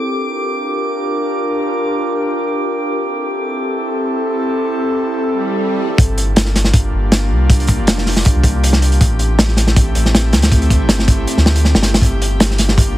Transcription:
Already playing: analog synth pad D4 F4 G4 A#4, synth texture D6
2.97 analog synth pad C4 E4 A4
5.23 swell
5.98 sub bass G1, analog synth pad A#3 D4 F4 G4, kick, closed hi-hat
6.18 closed hi-hat
6.36 snare, closed hi-hat
6.45 snare
6.55 snare, closed hi-hat
6.64 snare
6.74 kick, closed hi-hat
6.93 sub bass G1
7.12 snare, closed hi-hat
7.31 sub bass C2
7.50 kick, closed hi-hat
7.60 closed hi-hat
7.67 kick, closed hi-hat
7.78 sub bass F1
7.87 snare, closed hi-hat
7.98 snare
8.06 snare, open hi-hat
8.16 snare
8.25 kick, closed hi-hat
8.35 sub bass C2
8.43 kick, closed hi-hat
8.64 closed hi-hat
8.73 snare
8.82 closed hi-hat
8.92 closed hi-hat
9.01 sub bass A1, analog synth pad A3 C4 E4, kick, closed hi-hat
9.19 closed hi-hat
9.39 snare, closed hi-hat
9.48 snare
9.57 snare, closed hi-hat
9.67 snare
9.76 kick, closed hi-hat
9.95 sub bass A1, closed hi-hat
10.06 snare
10.15 snare, closed hi-hat
10.33 sub bass D2, snare, closed hi-hat
10.42 snare, closed hi-hat
10.52 kick, closed hi-hat
10.62 closed hi-hat
10.70 kick, closed hi-hat
10.80 sub bass G1
10.89 snare, closed hi-hat
10.99 snare
11.08 kick, closed hi-hat
11.27 closed hi-hat
11.37 sub bass D2, snare
11.46 snare
11.56 closed hi-hat
11.65 snare
11.75 sub bass G1, snare
11.82 snare, closed hi-hat
11.94 snare, closed hi-hat
12.02 sub bass G1, analog synth pad A#3 D4 F4, kick, closed hi-hat
12.22 closed hi-hat
12.40 snare, closed hi-hat
12.51 snare
12.58 snare, closed hi-hat
12.69 snare
12.78 kick, closed hi-hat

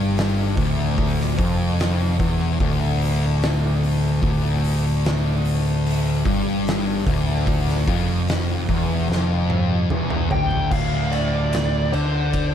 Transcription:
Already playing: picked electric bass G1, distorted electric guitar G2
0.17 snare, open hi-hat
0.57 picked electric bass D1, distorted electric guitar D2, kick, open hi-hat
0.98 kick, open hi-hat
1.20 snare
1.38 picked electric bass F1, distorted electric guitar F2, kick, open hi-hat
1.79 snare, open hi-hat
2.19 picked electric bass E1, distorted electric guitar E2, kick, open hi-hat
2.60 picked electric bass D1, distorted electric guitar D2, kick, open hi-hat
3.01 open hi-hat
3.42 snare, open hi-hat
3.83 open hi-hat
4.22 picked electric bass D1, distorted electric guitar D2, kick, open hi-hat
4.64 open hi-hat
5.04 snare, open hi-hat
5.45 open hi-hat
5.86 open hi-hat
6.25 picked electric bass G1, distorted electric guitar G2, kick, open hi-hat
6.67 snare, open hi-hat
7.06 picked electric bass D1, distorted electric guitar D2, kick, open hi-hat
7.47 kick, open hi-hat
7.69 snare
7.88 picked electric bass F1, distorted electric guitar F2, kick, open hi-hat
8.28 snare, open hi-hat
8.69 picked electric bass E1, distorted electric guitar E2, kick, open hi-hat
9.09 picked electric bass F1, distorted electric guitar F2, snare
9.50 high tom
9.90 picked electric bass E1, distorted electric guitar E2, mid tom
10.10 mid tom
10.31 picked electric bass D1, distorted electric guitar D2, lead electric guitar G5, floor tom
10.51 floor tom
10.71 picked electric bass D1, distorted electric guitar D2, lead electric guitar F5, kick, crash
11.12 lead electric guitar D5, ride
11.53 snare, ride
11.93 picked electric bass D2, distorted electric guitar D3, lead electric guitar C5, ride
12.33 kick, ride

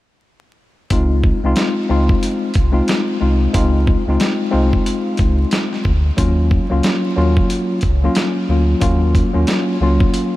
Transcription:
0.90 sub bass C#2, tine electric piano G#3 C4 D#4 F4, kick, closed hi-hat
1.24 kick
1.44 sub bass C2, tine electric piano G#3 C4 D#4 F4
1.56 snare, closed hi-hat
1.89 sub bass C#2, tine electric piano G#3 C4 D#4 F4
2.09 kick
2.23 closed hi-hat
2.54 sub bass C2, kick, closed hi-hat
2.72 tine electric piano G#3 C4 D#4 F4
2.88 snare, closed hi-hat
3.20 sub bass C2, tine electric piano G#3 C4 D#4 F4
3.53 sub bass C#2, tine electric piano G#3 C4 D#4 F4, kick, closed hi-hat
3.87 kick
4.07 sub bass C#2, tine electric piano G#3 C4 D#4 F4
4.20 snare, closed hi-hat
4.50 sub bass C2, tine electric piano G#3 C4 D#4 F4
4.73 kick
4.86 closed hi-hat
5.17 sub bass C#2, kick, closed hi-hat
5.51 snare, closed hi-hat
5.73 snare
5.85 sub bass D2, kick
6.17 sub bass D#2, tine electric piano F#3 A#3 C#4 F4, kick, closed hi-hat
6.51 kick
6.70 sub bass C#2, tine electric piano F#3 A#3 C#4 F4
6.83 snare, closed hi-hat
7.16 sub bass D#2, tine electric piano F#3 A#3 C#4 F4
7.37 kick
7.50 closed hi-hat
7.81 sub bass C#2, kick, closed hi-hat
8.03 tine electric piano F#3 A#3 C#4 F4
8.15 snare, closed hi-hat
8.49 sub bass D2, tine electric piano F#3 A#3 C#4 F4
8.80 sub bass D#2, tine electric piano F#3 A#3 C#4 F4, kick, closed hi-hat
9.15 kick, closed hi-hat
9.33 sub bass D#2, tine electric piano F#3 A#3 C#4 F4
9.47 snare, closed hi-hat
9.81 sub bass C#2, tine electric piano F#3 A#3 C#4 F4
10.00 kick
10.14 closed hi-hat

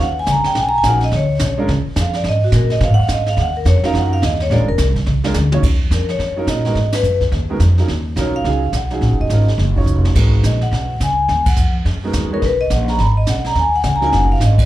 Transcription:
0.00 upright bass D#2, vibraphone F#5
0.19 vibraphone G#5
0.26 upright bass C#2, kick, snare, hi-hat pedal
0.31 vibraphone A#5
0.44 vibraphone G5, muted upright bass stroke, snare
0.55 upright bass B1, vibraphone G#5, brush sweep, kick, snare
0.69 vibraphone A#5
0.78 vibraphone G#5
0.83 upright bass A#1, upright piano F#3 C#4 D#4 F4 A#4, vibraphone F#5, kick, snare, hi-hat pedal
1.01 vibraphone D#5, snare
1.11 upright bass D2, brush sweep, kick, snare
1.16 vibraphone C#5
1.39 upright bass B1, kick, snare, hi-hat pedal
1.58 upright piano G#3 C#4 D4 F4 A#4
1.68 upright bass C#2, brush sweep, kick, snare
1.86 muted upright bass stroke
1.96 upright bass F2, kick, snare, hi-hat pedal
2.01 vibraphone F5
2.13 vibraphone D5, snare
2.24 upright bass G#2, brush sweep, kick, snare
2.28 vibraphone D#5
2.44 vibraphone F#4
2.52 upright bass A#2, vibraphone A#4, kick, snare, hi-hat pedal
2.70 vibraphone D#5, snare
2.80 upright bass B2, vibraphone F5, brush sweep, kick, snare
2.90 upright bass G#2
2.94 vibraphone F#5
3.03 vibraphone F5
3.08 upright bass G#2, kick, snare, hi-hat pedal
3.13 vibraphone D#5
3.26 vibraphone F5, snare
3.37 upright bass D#2, brush sweep, kick, snare
3.41 vibraphone F#5
3.57 vibraphone A#4
3.65 upright bass F2, vibraphone C#5, kick, snare, hi-hat pedal
3.83 upright piano F#3 C#4 D#4 F4 A#4, vibraphone F5, muted upright bass stroke, snare
3.94 upright bass F#2, vibraphone F#5, brush sweep, kick, snare
4.13 vibraphone F5
4.22 upright bass D#2, vibraphone D#5, kick, snare, hi-hat pedal
4.40 vibraphone C#5, snare
4.50 upright bass A#1, upright piano G#3 C#4 D4 F4 A#4, vibraphone D5, brush sweep, kick, snare
4.59 upright bass G#1
4.68 upright bass F1, vibraphone A#4
4.78 upright bass C2, kick, snare, hi-hat pedal
4.96 kick, snare
5.06 upright bass C#2, snare
5.24 upright piano G#3 C#4 D4 F4 A#4, snare
5.34 upright bass D2, snare, hi-hat pedal
5.52 upright piano F#3 C#4 D#4 F4 C#5, mid tom
5.63 upright bass D#2, brush sweep, kick, snare, crash
5.91 upright bass F2, vibraphone A#4, kick, snare, hi-hat pedal
6.09 vibraphone C#5, snare
6.19 upright bass F#2, brush sweep, kick, snare
6.36 upright piano F#3 C#4 D#4 F4 A#4
6.47 upright bass A#2, vibraphone D#5, kick, snare, hi-hat pedal
6.65 upright piano G#3 B3 D#4 F#4 A#4, snare
6.75 upright bass G#2, brush sweep, kick, snare
6.92 vibraphone B4, snare, ride
7.03 upright bass F#2, hi-hat pedal
7.21 kick, snare
7.32 upright bass D#2, brush sweep, kick, snare
7.50 upright piano G#3 B3 D#4 F#4 A#4
7.60 upright bass F2, kick, snare, hi-hat pedal
7.78 upright piano F#3 C#4 D#4 F4 A#4, snare
7.88 upright bass D#2, brush sweep, kick, snare
8.16 upright bass B1, upright piano F#3 C#4 D#4 F4 A#4, vibraphone C#5, kick, snare, hi-hat pedal
8.36 vibraphone F5
8.44 upright bass C#2, upright piano F#3 C#4 D#4 F4 G#4, brush sweep, kick, snare
8.72 upright bass B1, vibraphone F#5, kick, snare, hi-hat pedal
8.90 upright piano F#3 C#4 D#4 F4 G#4, snare
9.01 upright bass A#1, brush sweep, kick, snare
9.11 upright bass F#1
9.20 upright bass D#1, vibraphone D#5
9.30 upright bass G#1, upright piano F#3 C#4 D#4 F4 A#4, kick, snare, hi-hat pedal
9.48 snare
9.58 upright bass F#1, brush sweep, kick, snare
9.76 upright piano F#3 C#4 D#4 F4 C#5, kick
9.86 upright bass F1, hi-hat pedal
10.05 snare
10.15 upright bass G#1, upright piano G#3 B3 D#4 F#4 A#4, brush sweep, kick, snare, crash
10.43 upright bass A#1, vibraphone D#5, kick, snare, hi-hat pedal
10.61 vibraphone F#5, snare
10.71 upright bass B1, brush sweep, kick, snare
11.00 upright bass C#2, vibraphone G#5, kick, snare, hi-hat pedal
11.28 upright bass D#2, brush sweep, kick, snare
11.46 vibraphone F#5, kick, crash
11.56 upright bass F2, hi-hat pedal
11.85 upright bass F#2, brush sweep, kick, snare
12.03 upright piano G#3 B3 D#4 F#4 A#4
12.13 upright bass D#2, kick, snare, hi-hat pedal
12.31 upright piano G#3 B3 D#4 F#4 C#5, vibraphone A#4
12.42 upright bass B1, vibraphone B4, brush sweep, kick, snare
12.61 vibraphone D#5
12.70 upright bass A#1, vibraphone F#5, kick, snare, hi-hat pedal
12.88 vibraphone A#5, snare
12.98 upright bass G#1, vibraphone B5, brush sweep, kick, snare
13.17 vibraphone D#5
13.27 upright bass B1, vibraphone F#5, kick, snare, hi-hat pedal
13.44 vibraphone A#5, snare
13.55 upright bass D#2, brush sweep, kick, snare
13.59 vibraphone G#5
13.76 vibraphone F#5
13.83 upright bass C#2, vibraphone G#5, kick, snare, hi-hat pedal
13.96 vibraphone A#5
14.01 upright piano F#3 C#4 D#4 F4 A#4, snare
14.06 vibraphone G#5
14.12 upright bass F#1, vibraphone F#5, brush sweep, kick, snare
14.32 vibraphone F5
14.40 upright bass G#1, kick, snare, hi-hat pedal
14.44 vibraphone D#5
14.58 vibraphone D5, kick, crash

